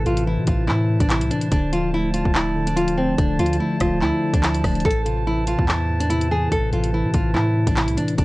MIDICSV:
0, 0, Header, 1, 6, 480
1, 0, Start_track
1, 0, Key_signature, 0, "minor"
1, 0, Tempo, 416667
1, 1749, Time_signature, 4, 2, 24, 8
1, 9501, End_track
2, 0, Start_track
2, 0, Title_t, "Woodwind section"
2, 0, Program_c, 0, 71
2, 0, Note_on_c, 0, 64, 78
2, 0, Note_on_c, 0, 71, 72
2, 0, Note_on_c, 0, 72, 73
2, 0, Note_on_c, 0, 81, 85
2, 1710, Note_off_c, 0, 64, 0
2, 1710, Note_off_c, 0, 71, 0
2, 1750, Note_on_c, 0, 53, 81
2, 1750, Note_on_c, 0, 74, 72
2, 5550, Note_off_c, 0, 53, 0
2, 5551, Note_off_c, 0, 74, 0
2, 5590, Note_on_c, 0, 71, 73
2, 5591, Note_on_c, 0, 64, 78
2, 9233, Note_off_c, 0, 64, 0
2, 9233, Note_off_c, 0, 71, 0
2, 9233, Note_off_c, 0, 72, 0
2, 9233, Note_off_c, 0, 81, 0
2, 9429, Note_on_c, 0, 53, 77
2, 9429, Note_on_c, 0, 72, 71
2, 9429, Note_on_c, 0, 74, 70
2, 9429, Note_on_c, 0, 81, 87
2, 9501, Note_off_c, 0, 53, 0
2, 9501, Note_off_c, 0, 72, 0
2, 9501, Note_off_c, 0, 74, 0
2, 9501, Note_off_c, 0, 81, 0
2, 9501, End_track
3, 0, Start_track
3, 0, Title_t, "Nylon-string guitar"
3, 0, Program_c, 1, 24
3, 74, Note_on_c, 1, 65, 85
3, 285, Note_off_c, 1, 65, 0
3, 314, Note_on_c, 1, 64, 75
3, 525, Note_off_c, 1, 64, 0
3, 548, Note_on_c, 1, 65, 78
3, 761, Note_off_c, 1, 65, 0
3, 778, Note_on_c, 1, 64, 91
3, 1128, Note_off_c, 1, 64, 0
3, 1160, Note_on_c, 1, 62, 86
3, 1258, Note_off_c, 1, 62, 0
3, 1269, Note_on_c, 1, 64, 79
3, 1482, Note_off_c, 1, 64, 0
3, 1504, Note_on_c, 1, 62, 83
3, 1719, Note_off_c, 1, 62, 0
3, 1744, Note_on_c, 1, 62, 91
3, 1959, Note_off_c, 1, 62, 0
3, 1990, Note_on_c, 1, 65, 79
3, 2202, Note_off_c, 1, 65, 0
3, 2235, Note_on_c, 1, 64, 82
3, 2445, Note_off_c, 1, 64, 0
3, 2463, Note_on_c, 1, 65, 78
3, 2678, Note_off_c, 1, 65, 0
3, 2713, Note_on_c, 1, 64, 82
3, 3056, Note_off_c, 1, 64, 0
3, 3073, Note_on_c, 1, 62, 82
3, 3174, Note_off_c, 1, 62, 0
3, 3184, Note_on_c, 1, 65, 84
3, 3399, Note_off_c, 1, 65, 0
3, 3427, Note_on_c, 1, 60, 80
3, 3641, Note_off_c, 1, 60, 0
3, 3669, Note_on_c, 1, 62, 89
3, 3882, Note_off_c, 1, 62, 0
3, 3907, Note_on_c, 1, 65, 83
3, 4121, Note_off_c, 1, 65, 0
3, 4148, Note_on_c, 1, 64, 75
3, 4361, Note_off_c, 1, 64, 0
3, 4383, Note_on_c, 1, 65, 77
3, 4598, Note_off_c, 1, 65, 0
3, 4632, Note_on_c, 1, 64, 86
3, 4975, Note_off_c, 1, 64, 0
3, 5000, Note_on_c, 1, 62, 79
3, 5098, Note_off_c, 1, 62, 0
3, 5116, Note_on_c, 1, 64, 81
3, 5326, Note_off_c, 1, 64, 0
3, 5353, Note_on_c, 1, 62, 80
3, 5564, Note_off_c, 1, 62, 0
3, 5591, Note_on_c, 1, 69, 97
3, 5803, Note_off_c, 1, 69, 0
3, 5823, Note_on_c, 1, 65, 74
3, 6038, Note_off_c, 1, 65, 0
3, 6071, Note_on_c, 1, 64, 90
3, 6283, Note_off_c, 1, 64, 0
3, 6309, Note_on_c, 1, 65, 78
3, 6522, Note_off_c, 1, 65, 0
3, 6552, Note_on_c, 1, 64, 82
3, 6895, Note_off_c, 1, 64, 0
3, 6912, Note_on_c, 1, 62, 85
3, 7014, Note_off_c, 1, 62, 0
3, 7025, Note_on_c, 1, 64, 91
3, 7240, Note_off_c, 1, 64, 0
3, 7273, Note_on_c, 1, 68, 82
3, 7484, Note_off_c, 1, 68, 0
3, 7509, Note_on_c, 1, 69, 91
3, 7722, Note_off_c, 1, 69, 0
3, 7756, Note_on_c, 1, 65, 87
3, 7965, Note_off_c, 1, 65, 0
3, 7994, Note_on_c, 1, 64, 76
3, 8205, Note_off_c, 1, 64, 0
3, 8230, Note_on_c, 1, 65, 80
3, 8442, Note_off_c, 1, 65, 0
3, 8457, Note_on_c, 1, 64, 90
3, 8807, Note_off_c, 1, 64, 0
3, 8839, Note_on_c, 1, 62, 85
3, 8938, Note_off_c, 1, 62, 0
3, 8950, Note_on_c, 1, 64, 80
3, 9162, Note_off_c, 1, 64, 0
3, 9182, Note_on_c, 1, 62, 82
3, 9398, Note_off_c, 1, 62, 0
3, 9422, Note_on_c, 1, 62, 91
3, 9501, Note_off_c, 1, 62, 0
3, 9501, End_track
4, 0, Start_track
4, 0, Title_t, "Tine electric piano"
4, 0, Program_c, 2, 4
4, 0, Control_c, 2, 64, 127
4, 0, Note_on_c, 2, 45, 94
4, 0, Note_on_c, 2, 48, 91
4, 0, Note_on_c, 2, 52, 83
4, 63, Note_off_c, 2, 48, 0
4, 63, Note_on_c, 2, 48, 75
4, 289, Note_off_c, 2, 52, 0
4, 303, Note_on_c, 2, 52, 100
4, 1020, Note_off_c, 2, 45, 0
4, 1033, Note_on_c, 2, 45, 83
4, 1247, Note_off_c, 2, 48, 0
4, 1261, Note_on_c, 2, 48, 85
4, 1501, Note_off_c, 2, 52, 0
4, 1515, Note_on_c, 2, 52, 79
4, 1744, Note_off_c, 2, 48, 0
4, 1749, Note_on_c, 2, 50, 97
4, 1751, Note_off_c, 2, 45, 0
4, 1751, Note_off_c, 2, 52, 0
4, 1765, Control_c, 2, 64, 0
4, 1940, Control_c, 2, 64, 127
4, 1985, Note_on_c, 2, 53, 81
4, 2227, Note_on_c, 2, 57, 92
4, 2934, Note_off_c, 2, 50, 0
4, 2948, Note_on_c, 2, 50, 85
4, 3175, Note_off_c, 2, 53, 0
4, 3189, Note_on_c, 2, 53, 85
4, 3409, Note_off_c, 2, 57, 0
4, 3423, Note_on_c, 2, 57, 78
4, 3652, Note_off_c, 2, 50, 0
4, 3665, Note_on_c, 2, 50, 92
4, 3894, Note_off_c, 2, 53, 0
4, 3907, Note_on_c, 2, 53, 87
4, 4132, Note_off_c, 2, 57, 0
4, 4146, Note_on_c, 2, 57, 93
4, 4860, Note_off_c, 2, 50, 0
4, 4874, Note_on_c, 2, 50, 79
4, 5088, Note_off_c, 2, 53, 0
4, 5102, Note_on_c, 2, 53, 82
4, 5328, Note_off_c, 2, 57, 0
4, 5342, Note_on_c, 2, 57, 82
4, 5585, Note_off_c, 2, 53, 0
4, 5585, Note_off_c, 2, 57, 0
4, 5588, Note_on_c, 2, 45, 82
4, 5591, Note_off_c, 2, 50, 0
4, 5602, Control_c, 2, 64, 0
4, 5816, Control_c, 2, 64, 127
4, 5834, Note_on_c, 2, 48, 79
4, 6071, Note_on_c, 2, 52, 90
4, 6770, Note_off_c, 2, 45, 0
4, 6784, Note_on_c, 2, 45, 77
4, 7023, Note_off_c, 2, 48, 0
4, 7036, Note_on_c, 2, 48, 86
4, 7260, Note_off_c, 2, 52, 0
4, 7274, Note_on_c, 2, 52, 81
4, 7497, Note_off_c, 2, 45, 0
4, 7511, Note_on_c, 2, 45, 95
4, 7732, Note_off_c, 2, 48, 0
4, 7746, Note_on_c, 2, 48, 80
4, 7972, Note_off_c, 2, 52, 0
4, 7986, Note_on_c, 2, 52, 97
4, 8700, Note_off_c, 2, 45, 0
4, 8714, Note_on_c, 2, 45, 87
4, 8926, Note_off_c, 2, 48, 0
4, 8940, Note_on_c, 2, 48, 86
4, 9182, Note_off_c, 2, 52, 0
4, 9196, Note_on_c, 2, 52, 80
4, 9424, Note_off_c, 2, 48, 0
4, 9430, Note_on_c, 2, 50, 91
4, 9431, Note_off_c, 2, 45, 0
4, 9432, Note_off_c, 2, 52, 0
4, 9442, Control_c, 2, 64, 0
4, 9501, Note_off_c, 2, 50, 0
4, 9501, End_track
5, 0, Start_track
5, 0, Title_t, "808-style bass"
5, 0, Program_c, 3, 38
5, 68, Note_on_c, 3, 33, 103
5, 435, Note_on_c, 3, 48, 100
5, 453, Note_off_c, 3, 33, 0
5, 542, Note_off_c, 3, 48, 0
5, 548, Note_on_c, 3, 33, 109
5, 789, Note_on_c, 3, 45, 99
5, 806, Note_off_c, 3, 33, 0
5, 1137, Note_off_c, 3, 45, 0
5, 1156, Note_on_c, 3, 33, 109
5, 1397, Note_on_c, 3, 36, 102
5, 1414, Note_off_c, 3, 33, 0
5, 1503, Note_off_c, 3, 36, 0
5, 1748, Note_on_c, 3, 26, 113
5, 2562, Note_off_c, 3, 26, 0
5, 2596, Note_on_c, 3, 26, 99
5, 3626, Note_off_c, 3, 26, 0
5, 3668, Note_on_c, 3, 26, 108
5, 3898, Note_off_c, 3, 26, 0
5, 3908, Note_on_c, 3, 38, 106
5, 4139, Note_off_c, 3, 38, 0
5, 4388, Note_on_c, 3, 26, 111
5, 4629, Note_on_c, 3, 38, 102
5, 4646, Note_off_c, 3, 26, 0
5, 4749, Note_off_c, 3, 38, 0
5, 4995, Note_on_c, 3, 38, 102
5, 5334, Note_off_c, 3, 38, 0
5, 5347, Note_on_c, 3, 26, 105
5, 5578, Note_off_c, 3, 26, 0
5, 5588, Note_on_c, 3, 33, 109
5, 6401, Note_off_c, 3, 33, 0
5, 6437, Note_on_c, 3, 40, 99
5, 7466, Note_off_c, 3, 40, 0
5, 7508, Note_on_c, 3, 33, 110
5, 7739, Note_off_c, 3, 33, 0
5, 7748, Note_on_c, 3, 33, 108
5, 8116, Note_on_c, 3, 48, 94
5, 8133, Note_off_c, 3, 33, 0
5, 8223, Note_off_c, 3, 48, 0
5, 8228, Note_on_c, 3, 33, 107
5, 8468, Note_on_c, 3, 45, 102
5, 8485, Note_off_c, 3, 33, 0
5, 8817, Note_off_c, 3, 45, 0
5, 8834, Note_on_c, 3, 33, 105
5, 9074, Note_on_c, 3, 36, 103
5, 9092, Note_off_c, 3, 33, 0
5, 9182, Note_off_c, 3, 36, 0
5, 9428, Note_on_c, 3, 26, 114
5, 9501, Note_off_c, 3, 26, 0
5, 9501, End_track
6, 0, Start_track
6, 0, Title_t, "Drums"
6, 69, Note_on_c, 9, 42, 42
6, 184, Note_off_c, 9, 42, 0
6, 195, Note_on_c, 9, 42, 75
6, 311, Note_off_c, 9, 42, 0
6, 542, Note_on_c, 9, 42, 82
6, 548, Note_on_c, 9, 36, 95
6, 657, Note_off_c, 9, 42, 0
6, 663, Note_off_c, 9, 36, 0
6, 789, Note_on_c, 9, 39, 73
6, 904, Note_off_c, 9, 39, 0
6, 1155, Note_on_c, 9, 36, 102
6, 1156, Note_on_c, 9, 42, 86
6, 1266, Note_on_c, 9, 39, 115
6, 1270, Note_off_c, 9, 42, 0
6, 1270, Note_on_c, 9, 42, 92
6, 1271, Note_off_c, 9, 36, 0
6, 1381, Note_off_c, 9, 39, 0
6, 1386, Note_off_c, 9, 42, 0
6, 1396, Note_on_c, 9, 42, 77
6, 1509, Note_off_c, 9, 42, 0
6, 1509, Note_on_c, 9, 42, 84
6, 1624, Note_off_c, 9, 42, 0
6, 1629, Note_on_c, 9, 42, 74
6, 1744, Note_off_c, 9, 42, 0
6, 1747, Note_on_c, 9, 42, 88
6, 1748, Note_on_c, 9, 36, 116
6, 1862, Note_off_c, 9, 42, 0
6, 1863, Note_off_c, 9, 36, 0
6, 1991, Note_on_c, 9, 42, 69
6, 2106, Note_off_c, 9, 42, 0
6, 2463, Note_on_c, 9, 42, 83
6, 2578, Note_off_c, 9, 42, 0
6, 2596, Note_on_c, 9, 36, 91
6, 2708, Note_on_c, 9, 39, 126
6, 2711, Note_off_c, 9, 36, 0
6, 2823, Note_off_c, 9, 39, 0
6, 3076, Note_on_c, 9, 42, 91
6, 3190, Note_off_c, 9, 42, 0
6, 3190, Note_on_c, 9, 42, 95
6, 3306, Note_off_c, 9, 42, 0
6, 3316, Note_on_c, 9, 42, 78
6, 3431, Note_off_c, 9, 42, 0
6, 3668, Note_on_c, 9, 36, 118
6, 3668, Note_on_c, 9, 42, 89
6, 3783, Note_off_c, 9, 36, 0
6, 3783, Note_off_c, 9, 42, 0
6, 3908, Note_on_c, 9, 42, 57
6, 3987, Note_off_c, 9, 42, 0
6, 3987, Note_on_c, 9, 42, 61
6, 4067, Note_off_c, 9, 42, 0
6, 4067, Note_on_c, 9, 42, 62
6, 4182, Note_off_c, 9, 42, 0
6, 4381, Note_on_c, 9, 42, 84
6, 4388, Note_on_c, 9, 36, 101
6, 4388, Note_on_c, 9, 37, 104
6, 4496, Note_off_c, 9, 42, 0
6, 4503, Note_off_c, 9, 36, 0
6, 4503, Note_off_c, 9, 37, 0
6, 4627, Note_on_c, 9, 39, 75
6, 4743, Note_off_c, 9, 39, 0
6, 4995, Note_on_c, 9, 36, 97
6, 4995, Note_on_c, 9, 42, 88
6, 5106, Note_on_c, 9, 39, 114
6, 5110, Note_off_c, 9, 36, 0
6, 5110, Note_off_c, 9, 42, 0
6, 5110, Note_on_c, 9, 42, 92
6, 5221, Note_off_c, 9, 39, 0
6, 5225, Note_off_c, 9, 42, 0
6, 5235, Note_on_c, 9, 42, 77
6, 5347, Note_on_c, 9, 36, 99
6, 5347, Note_on_c, 9, 37, 91
6, 5348, Note_on_c, 9, 46, 61
6, 5350, Note_off_c, 9, 42, 0
6, 5462, Note_off_c, 9, 37, 0
6, 5463, Note_off_c, 9, 36, 0
6, 5463, Note_off_c, 9, 46, 0
6, 5476, Note_on_c, 9, 42, 45
6, 5531, Note_off_c, 9, 42, 0
6, 5531, Note_on_c, 9, 42, 55
6, 5587, Note_off_c, 9, 42, 0
6, 5587, Note_on_c, 9, 42, 68
6, 5588, Note_on_c, 9, 36, 115
6, 5651, Note_off_c, 9, 42, 0
6, 5651, Note_on_c, 9, 42, 78
6, 5703, Note_off_c, 9, 36, 0
6, 5766, Note_off_c, 9, 42, 0
6, 5829, Note_on_c, 9, 42, 67
6, 5944, Note_off_c, 9, 42, 0
6, 6302, Note_on_c, 9, 42, 86
6, 6417, Note_off_c, 9, 42, 0
6, 6436, Note_on_c, 9, 36, 96
6, 6549, Note_on_c, 9, 39, 127
6, 6551, Note_off_c, 9, 36, 0
6, 6664, Note_off_c, 9, 39, 0
6, 6917, Note_on_c, 9, 42, 90
6, 7031, Note_off_c, 9, 42, 0
6, 7031, Note_on_c, 9, 42, 92
6, 7146, Note_off_c, 9, 42, 0
6, 7157, Note_on_c, 9, 42, 76
6, 7272, Note_off_c, 9, 42, 0
6, 7509, Note_on_c, 9, 36, 113
6, 7509, Note_on_c, 9, 42, 90
6, 7624, Note_off_c, 9, 36, 0
6, 7624, Note_off_c, 9, 42, 0
6, 7749, Note_on_c, 9, 42, 44
6, 7864, Note_off_c, 9, 42, 0
6, 7876, Note_on_c, 9, 42, 75
6, 7991, Note_off_c, 9, 42, 0
6, 8222, Note_on_c, 9, 42, 84
6, 8228, Note_on_c, 9, 36, 97
6, 8337, Note_off_c, 9, 42, 0
6, 8343, Note_off_c, 9, 36, 0
6, 8469, Note_on_c, 9, 39, 74
6, 8584, Note_off_c, 9, 39, 0
6, 8835, Note_on_c, 9, 36, 101
6, 8836, Note_on_c, 9, 42, 89
6, 8946, Note_on_c, 9, 39, 117
6, 8950, Note_off_c, 9, 36, 0
6, 8950, Note_off_c, 9, 42, 0
6, 8950, Note_on_c, 9, 42, 93
6, 9062, Note_off_c, 9, 39, 0
6, 9066, Note_off_c, 9, 42, 0
6, 9076, Note_on_c, 9, 42, 76
6, 9189, Note_off_c, 9, 42, 0
6, 9189, Note_on_c, 9, 42, 86
6, 9304, Note_off_c, 9, 42, 0
6, 9309, Note_on_c, 9, 42, 71
6, 9424, Note_off_c, 9, 42, 0
6, 9427, Note_on_c, 9, 42, 88
6, 9428, Note_on_c, 9, 36, 117
6, 9501, Note_off_c, 9, 36, 0
6, 9501, Note_off_c, 9, 42, 0
6, 9501, End_track
0, 0, End_of_file